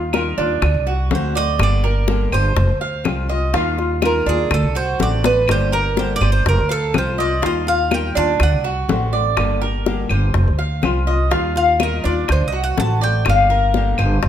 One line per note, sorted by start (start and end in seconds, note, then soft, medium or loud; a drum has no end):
0.00 0.34 D#2 medium
0.00 0.13 G3 soft
0.00 0.13 D#4 soft
0.00 0.12 F4 medium
0.00 0.13 F4 soft
0.13 0.37 D#3 medium
0.13 0.37 G3 medium
0.13 0.38 D#4 medium
0.13 0.37 F4 medium
0.13 0.37 A#4 medium
0.13 high bongo medium
0.13 claves medium
0.38 0.61 D#2 medium
0.38 0.63 G3 soft
0.38 0.85 D4 medium
0.38 0.62 D#4 soft
0.38 0.61 F4 soft
0.38 high bongo soft
0.62 0.74 D2 medium
0.62 muted nylon-string guitar stroke medium
0.62 high bongo medium
0.62 claves medium
0.74 1.09 C2 medium
0.87 1.34 F#4 medium
0.87 high bongo soft
1.11 1.57 D2 medium
1.11 1.34 D3 medium
1.11 1.35 A3 medium
1.11 1.35 C4 medium
1.11 1.34 F#4 medium
1.11 1.36 C5 medium
1.11 high bongo soft
1.11 low bongo medium
1.35 1.60 A3 soft
1.35 1.59 C4 soft
1.35 1.58 F#4 soft
1.35 1.82 D5 medium
1.35 1.60 D#5 loud
1.59 2.29 G1 medium
1.59 1.83 D3 medium
1.59 1.83 G3 medium
1.59 1.83 A#3 medium
1.59 1.84 D4 medium
1.59 1.82 G4 medium
1.59 high bongo medium
1.59 claves medium
1.63 2.30 D5 medium
1.84 2.08 A#3 soft
1.84 2.08 D4 soft
1.84 2.07 G4 soft
1.84 2.31 A#4 medium
1.84 high bongo soft
2.08 2.31 D3 medium
2.08 2.32 G3 medium
2.08 2.32 A#3 medium
2.08 2.32 D4 medium
2.08 2.31 G4 medium
2.08 high bongo medium
2.32 2.55 G1 medium
2.32 2.57 A#3 soft
2.32 2.56 D4 soft
2.32 2.56 G4 medium
2.32 2.80 C5 medium
2.32 3.02 C5 medium
2.32 high bongo soft
2.32 claves medium
2.56 2.68 F1 loud
2.56 muted nylon-string guitar stroke medium
2.56 high bongo medium
2.69 3.03 D2 medium
2.81 3.28 F5 medium
2.81 high bongo soft
3.04 3.51 C2 medium
3.04 3.28 F3 medium
3.04 3.28 G3 medium
3.04 3.29 C4 medium
3.04 3.27 F4 medium
3.04 high bongo soft
3.04 low bongo medium
3.04 claves medium
3.28 3.53 G3 soft
3.28 3.53 C4 soft
3.28 3.52 F4 medium
3.28 3.53 D#5 medium
3.54 4.23 D#2 medium
3.54 3.77 D#3 medium
3.54 3.78 G3 medium
3.54 3.78 D#4 medium
3.54 4.01 F4 medium
3.54 3.76 F4 medium
3.54 high bongo medium
3.77 4.01 G3 soft
3.77 4.02 D#4 soft
3.77 4.01 F4 medium
3.77 high bongo soft
4.01 4.25 D#3 medium
4.01 4.26 G3 medium
4.01 4.26 D#4 medium
4.01 4.25 F4 medium
4.01 4.26 A#4 medium
4.01 4.28 A#4 medium
4.01 high bongo medium
4.01 claves medium
4.26 4.50 D#2 medium
4.26 4.51 G3 soft
4.26 4.74 D4 medium
4.26 4.51 D#4 soft
4.26 4.50 F4 soft
4.26 4.52 G#4 medium
4.26 high bongo soft
4.51 4.62 D2 loud
4.51 4.76 A4 medium
4.51 muted nylon-string guitar stroke medium
4.51 high bongo medium
4.51 claves medium
4.63 4.98 C2 medium
4.75 5.22 F#4 medium
4.75 5.00 C5 medium
4.75 high bongo soft
4.99 5.46 A1 medium
4.99 5.23 D3 medium
4.99 5.23 A3 medium
4.99 5.23 C4 medium
4.99 5.22 F#4 medium
4.99 5.25 D5 medium
4.99 high bongo soft
4.99 low bongo medium
5.24 5.48 A3 soft
5.24 5.48 C4 soft
5.24 5.47 F#4 soft
5.24 5.48 B4 medium
5.24 5.71 D5 medium
5.24 high bongo medium
5.48 6.18 G1 medium
5.48 5.71 D3 medium
5.48 5.72 G3 medium
5.48 5.72 A#3 medium
5.48 5.72 D4 medium
5.48 5.71 G4 medium
5.48 5.73 C5 medium
5.48 high bongo medium
5.48 claves medium
5.72 5.97 A#3 soft
5.72 5.96 D4 soft
5.72 5.96 G4 soft
5.72 6.20 A#4 medium
5.72 5.97 A#4 medium
5.72 high bongo soft
5.96 6.20 D3 medium
5.96 6.21 G3 medium
5.96 6.21 A#3 medium
5.96 6.21 D4 medium
5.96 6.20 G4 medium
5.96 6.14 C5 medium
5.96 high bongo medium
6.16 6.30 D5 loud
6.21 6.44 G1 medium
6.21 6.46 A#3 soft
6.21 6.45 D4 soft
6.21 6.45 G4 soft
6.21 6.68 C5 medium
6.21 high bongo soft
6.21 claves medium
6.32 6.47 C5 medium
6.46 6.57 F1 loud
6.46 6.71 A#4 medium
6.46 muted nylon-string guitar stroke medium
6.46 high bongo medium
6.58 6.92 D2 medium
6.69 6.94 A4 medium
6.69 7.17 F5 medium
6.69 high bongo soft
6.94 7.41 C2 medium
6.94 7.17 F3 medium
6.94 7.18 G3 medium
6.94 7.18 C4 medium
6.94 7.17 F4 medium
6.94 high bongo soft
6.94 low bongo medium
6.94 claves medium
6.98 7.20 C5 medium
7.18 7.42 G3 soft
7.18 7.42 C4 soft
7.18 7.42 F4 soft
7.18 7.43 D5 medium
7.18 7.42 D#5 medium
7.42 8.12 D#2 medium
7.42 7.66 D#3 medium
7.42 7.66 G3 medium
7.42 7.67 D#4 medium
7.42 7.90 F4 medium
7.42 7.66 F4 medium
7.42 7.68 D#5 medium
7.42 high bongo medium
7.67 7.90 G3 soft
7.67 7.91 D#4 soft
7.67 7.91 F4 soft
7.67 7.91 F5 loud
7.67 high bongo soft
7.91 8.14 D#3 medium
7.91 8.15 G3 medium
7.91 8.15 D#4 medium
7.91 8.15 F4 medium
7.91 8.15 A#4 medium
7.91 8.16 G5 medium
7.91 high bongo medium
7.91 claves medium
8.15 8.39 D#2 medium
8.15 8.40 G3 soft
8.15 8.63 D4 medium
8.15 8.40 D#4 soft
8.15 8.39 F4 soft
8.15 8.40 A5 loud
8.15 high bongo soft
8.40 8.52 D2 loud
8.40 9.35 F#5 medium
8.40 muted nylon-string guitar stroke medium
8.40 high bongo medium
8.40 claves medium
8.52 8.87 C2 medium
8.64 9.11 F#4 medium
8.64 high bongo soft
8.89 9.35 A1 medium
8.89 9.12 D3 medium
8.89 9.13 A3 medium
8.89 9.12 C4 medium
8.89 9.11 F#4 medium
8.89 high bongo soft
8.89 low bongo medium
9.13 9.37 A3 soft
9.13 9.37 C4 soft
9.13 9.36 F#4 soft
9.13 9.60 D5 medium
9.37 10.06 G1 medium
9.37 9.61 D3 medium
9.37 9.61 G3 medium
9.37 9.61 A#3 medium
9.37 9.61 D4 medium
9.37 9.60 G4 medium
9.37 high bongo medium
9.37 claves medium
9.61 9.86 A#3 soft
9.61 9.85 D4 soft
9.61 9.85 G4 soft
9.61 10.09 A#4 medium
9.61 high bongo soft
9.86 10.09 D3 medium
9.86 10.10 G3 medium
9.86 10.10 A#3 medium
9.86 10.09 D4 medium
9.86 10.08 G4 medium
9.86 high bongo medium
10.09 10.33 G1 medium
10.09 10.34 A#3 soft
10.09 10.34 D4 soft
10.09 10.33 G4 soft
10.09 10.58 C5 medium
10.09 high bongo soft
10.09 claves medium
10.34 10.46 F1 loud
10.34 muted nylon-string guitar stroke medium
10.34 high bongo medium
10.47 10.82 D2 medium
10.59 11.06 F5 medium
10.59 high bongo soft
10.82 11.30 C2 medium
10.82 11.06 F3 medium
10.82 11.06 G3 medium
10.82 11.07 C4 medium
10.82 11.06 F4 medium
10.82 high bongo soft
10.82 low bongo medium
10.82 claves medium
11.07 11.30 G3 soft
11.07 11.31 C4 soft
11.07 11.30 F4 medium
11.07 11.31 D#5 medium
11.30 12.01 D#2 medium
11.30 11.54 D#3 medium
11.30 11.55 G3 medium
11.30 11.55 D#4 medium
11.30 11.79 F4 medium
11.30 11.54 F4 medium
11.30 high bongo medium
11.55 11.79 G3 soft
11.55 11.79 D#4 soft
11.55 11.79 F4 soft
11.55 11.80 F5 medium
11.55 high bongo soft
11.79 12.03 D#3 medium
11.79 12.04 G3 medium
11.79 12.04 D#4 medium
11.79 12.03 F4 medium
11.79 12.04 A#4 medium
11.79 12.05 D#5 medium
11.79 high bongo medium
11.79 claves medium
12.04 12.28 D#2 medium
12.04 12.29 G3 soft
12.04 12.51 D4 medium
12.04 12.28 D#4 soft
12.04 12.28 F4 medium
12.04 12.29 D5 medium
12.04 high bongo soft
12.28 12.40 D2 loud
12.28 12.46 C5 medium
12.28 muted nylon-string guitar stroke medium
12.28 high bongo medium
12.28 claves medium
12.41 12.76 C2 medium
12.48 12.62 D#5 medium
12.52 13.00 F#4 medium
12.52 high bongo soft
12.64 12.78 F#5 medium
12.77 13.24 A1 medium
12.77 13.01 D3 medium
12.77 13.01 A3 medium
12.77 13.01 C4 medium
12.77 13.00 F#4 medium
12.77 13.02 A5 loud
12.77 high bongo soft
12.77 low bongo medium
13.01 13.26 A3 soft
13.01 13.26 C4 soft
13.01 13.25 F#4 soft
13.01 13.49 D5 medium
13.01 13.26 G5 medium
13.25 13.95 G1 medium
13.25 13.49 D3 medium
13.25 13.49 G3 medium
13.25 13.50 A#3 medium
13.25 13.49 D4 medium
13.25 13.48 G4 medium
13.25 high bongo medium
13.25 claves medium
13.29 14.29 F5 medium
13.49 13.74 A#3 soft
13.49 13.74 D4 soft
13.49 13.73 G4 soft
13.49 13.97 A#4 medium
13.49 high bongo soft
13.74 13.98 D3 medium
13.74 13.98 G3 medium
13.74 13.98 A#3 medium
13.74 13.98 D4 medium
13.74 13.97 G4 medium
13.74 high bongo medium
13.98 14.22 G1 loud
13.98 14.23 A#3 soft
13.98 14.22 D4 soft
13.98 14.22 G4 soft
13.98 14.29 C5 medium
13.98 high bongo soft
13.98 claves medium
14.23 14.29 F1 loud
14.23 muted nylon-string guitar stroke medium
14.23 high bongo medium